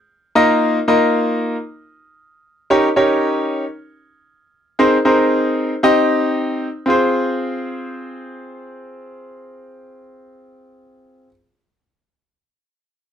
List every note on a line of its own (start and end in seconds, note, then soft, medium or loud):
0.35 0.77 A#3 loud
0.35 0.77 D#4 medium
0.35 0.77 F4 medium
0.35 0.77 A#4 medium
0.35 0.78 D#5 loud
0.88 1.55 A#3 medium
0.88 1.55 D#4 medium
0.88 1.55 F4 medium
0.88 1.55 A#4 medium
0.88 1.55 D#5 loud
2.70 2.87 C#4 medium
2.70 2.87 D#4 medium
2.70 2.87 G4 medium
2.70 2.87 A#4 medium
2.70 2.87 C#5 loud
2.96 3.63 C#4 medium
2.96 3.63 D#4 medium
2.96 3.63 G4 medium
2.96 3.63 A#4 medium
2.96 3.63 C#5 loud
4.79 4.96 C4 medium
4.79 4.96 D#4 medium
4.79 4.96 G#4 medium
4.79 4.96 A#4 medium
4.79 4.96 C5 loud
5.05 5.72 C4 medium
5.05 5.72 D#4 medium
5.05 5.72 G#4 medium
5.05 5.72 A#4 medium
5.05 5.72 C5 loud
5.83 6.67 C4 loud
5.83 6.67 D#4 medium
5.83 6.67 G4 medium
5.83 6.67 C5 medium
5.83 6.67 D#5 loud
6.86 11.26 C4 medium
6.86 11.27 F4 medium
6.86 11.28 G#4 medium
6.90 11.30 C5 loud